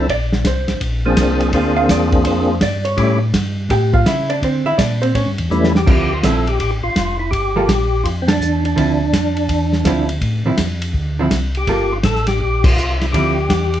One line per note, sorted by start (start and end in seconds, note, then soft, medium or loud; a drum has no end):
0.09 0.44 A#1 medium
0.09 0.44 D5 medium
0.09 kick soft
0.09 ride medium
0.32 snare medium
0.45 0.67 C2 medium
0.45 0.80 C5 medium
0.45 kick soft
0.45 snare medium
0.45 hi-hat pedal medium
0.45 ride medium
0.68 0.75 C2 soft
0.68 snare soft
0.68 ride soft
0.80 1.16 A#1 medium
0.80 kick soft
0.80 ride medium
1.06 1.52 F3 medium
1.06 1.52 A#3 medium
1.06 1.52 C4 medium
1.06 1.52 D4 medium
1.06 1.52 G#4 medium
1.16 1.52 C2 medium
1.16 kick soft
1.16 snare medium
1.16 hi-hat pedal medium
1.16 ride medium
1.40 ride soft
1.53 1.88 D2 medium
1.53 2.55 A#3 medium
1.53 2.55 C4 medium
1.53 2.55 D4 medium
1.53 2.55 F4 medium
1.53 2.55 G#4 medium
1.53 kick soft
1.53 ride medium
1.77 1.89 F5 medium
1.88 2.24 E2 medium
1.88 2.24 D5 medium
1.88 kick soft
1.88 snare medium
1.88 hi-hat pedal medium
1.88 ride medium
2.12 kick soft
2.12 ride soft
2.25 2.60 F2 medium
2.25 2.60 C5 medium
2.25 kick soft
2.25 ride medium
2.61 2.97 G2 medium
2.61 2.84 D5 medium
2.61 kick soft
2.61 snare medium
2.61 hi-hat pedal medium
2.61 ride medium
2.85 3.19 C#5 medium
2.85 ride soft
2.97 3.33 A2 medium
2.97 3.19 G3 medium
2.97 3.19 A3 medium
2.97 3.19 C#4 medium
2.97 3.19 E4 medium
2.97 3.19 G4 medium
2.97 kick soft
2.97 ride medium
3.33 3.69 G2 medium
3.33 kick soft
3.33 snare medium
3.33 hi-hat pedal medium
3.33 ride medium
3.69 4.05 A2 medium
3.69 3.94 G4 medium
3.69 3.93 G5 medium
3.69 kick soft
3.69 ride medium
3.93 4.06 F4 medium
3.93 4.06 F5 medium
3.93 kick soft
4.06 4.41 C#3 medium
4.06 4.30 E4 medium
4.06 4.29 E5 medium
4.06 kick soft
4.06 snare medium
4.06 hi-hat pedal medium
4.06 ride medium
4.30 4.43 D4 medium
4.30 4.42 D5 medium
4.30 ride soft
4.42 4.64 D3 medium
4.42 4.66 C4 medium
4.42 4.66 C5 medium
4.42 kick soft
4.42 ride medium
4.66 4.72 D3 soft
4.66 4.79 E4 medium
4.66 4.77 E5 loud
4.78 5.14 A#2 medium
4.78 5.02 D4 medium
4.78 5.01 D5 medium
4.78 kick soft
4.78 snare medium
4.78 hi-hat pedal medium
4.78 ride medium
5.02 5.15 C4 medium
5.02 5.14 C5 medium
5.02 ride soft
5.15 5.27 A2 medium
5.15 5.30 C#4 medium
5.15 5.29 C#5 medium
5.15 kick soft
5.15 ride medium
5.26 5.39 G2 medium
5.38 5.49 E2 medium
5.38 ride soft
5.50 5.86 E2 medium
5.50 5.72 E3 medium
5.50 5.72 G3 medium
5.50 5.72 A3 medium
5.50 5.73 C#4 medium
5.50 5.73 E4 medium
5.50 hi-hat pedal medium
5.64 snare medium
5.75 5.89 G4 medium
5.75 snare medium
5.86 6.22 D2 medium
5.86 6.08 D3 medium
5.86 6.09 F3 medium
5.86 6.09 C4 medium
5.86 6.09 E4 medium
5.86 kick medium
5.86 crash medium
5.91 6.13 G4 loud
6.13 6.25 F4 medium
6.23 6.58 A#1 medium
6.23 6.45 D3 medium
6.23 6.45 F3 medium
6.23 6.45 C4 medium
6.23 6.45 E4 medium
6.23 6.48 A4 loud
6.23 kick soft
6.23 snare medium
6.23 hi-hat pedal medium
6.23 ride medium
6.47 6.59 G4 medium
6.47 ride soft
6.59 6.81 A1 medium
6.59 6.71 G4 loud
6.59 kick soft
6.59 ride medium
6.83 6.90 A1 soft
6.83 7.17 F4 loud
6.96 7.31 F1 medium
6.96 kick soft
6.96 snare medium
6.96 hi-hat pedal medium
6.96 ride medium
7.19 7.31 E4 medium
7.31 7.67 G1 medium
7.31 8.06 G4 loud
7.31 kick soft
7.31 ride medium
7.56 7.67 G3 medium
7.56 7.68 A#3 medium
7.56 7.68 F4 medium
7.56 7.68 A4 medium
7.68 8.04 A#1 medium
7.68 kick soft
7.68 snare medium
7.68 hi-hat pedal medium
7.68 ride medium
8.04 8.40 F2 medium
8.04 8.10 F4 medium
8.04 kick soft
8.04 ride medium
8.22 8.30 C4 medium
8.28 8.64 D4 loud
8.28 snare medium
8.28 ride medium
8.39 8.75 E2 medium
8.39 hi-hat pedal medium
8.65 10.06 D4 medium
8.65 ride soft
8.76 9.12 D2 medium
8.76 8.98 D3 medium
8.76 8.98 F3 medium
8.76 8.99 C4 medium
8.76 8.99 E4 medium
8.76 kick soft
8.76 ride medium
9.13 9.48 F2 medium
9.13 kick soft
9.13 snare medium
9.13 hi-hat pedal medium
9.13 ride medium
9.37 ride soft
9.49 9.85 E2 medium
9.49 kick soft
9.49 ride medium
9.73 snare soft
9.84 10.21 D2 medium
9.84 10.07 D3 medium
9.84 10.08 F3 medium
9.84 10.08 C4 medium
9.84 10.08 E4 medium
9.84 kick soft
9.84 snare medium
9.84 hi-hat pedal medium
9.84 ride medium
10.09 ride soft
10.21 10.44 A2 medium
10.21 kick soft
10.21 ride medium
10.45 10.52 A2 soft
10.45 10.57 D3 medium
10.45 10.58 F3 medium
10.45 10.58 C4 medium
10.45 10.58 E4 medium
10.57 10.94 F2 medium
10.57 kick soft
10.57 snare medium
10.57 hi-hat pedal medium
10.57 ride medium
10.82 ride medium
10.93 11.30 D2 medium
10.93 kick soft
11.19 11.31 D3 medium
11.19 11.31 F3 medium
11.19 11.31 C4 medium
11.19 11.32 E4 medium
11.30 11.66 C2 medium
11.30 kick soft
11.30 snare medium
11.30 hi-hat pedal medium
11.30 ride medium
11.55 11.69 G4 medium
11.55 ride soft
11.67 12.03 G1 medium
11.67 11.89 G3 medium
11.67 11.90 A#3 medium
11.67 11.90 F4 medium
11.67 11.94 G4 loud
11.67 11.90 A4 medium
11.67 kick soft
11.67 ride medium
11.92 11.98 F4 medium
12.03 12.39 A1 medium
12.03 12.27 A4 medium
12.03 kick soft
12.03 snare medium
12.03 hi-hat pedal medium
12.03 ride medium
12.16 snare soft
12.27 12.39 G4 medium
12.27 snare soft
12.27 ride medium
12.40 12.76 A#1 medium
12.40 12.65 G4 medium
12.40 kick soft
12.63 12.98 F4 medium
12.63 kick medium
12.63 crash medium
12.77 13.12 C2 medium
12.77 hi-hat pedal medium
13.00 13.06 E4 medium
13.00 snare soft
13.00 ride soft
13.12 13.49 D2 medium
13.12 13.35 D3 medium
13.12 13.36 F3 medium
13.12 13.36 C4 medium
13.12 13.36 E4 medium
13.12 13.80 G4 medium
13.12 kick soft
13.12 ride medium
13.49 13.80 E2 medium
13.49 kick soft
13.49 snare medium
13.49 hi-hat pedal medium
13.49 ride medium
13.74 ride soft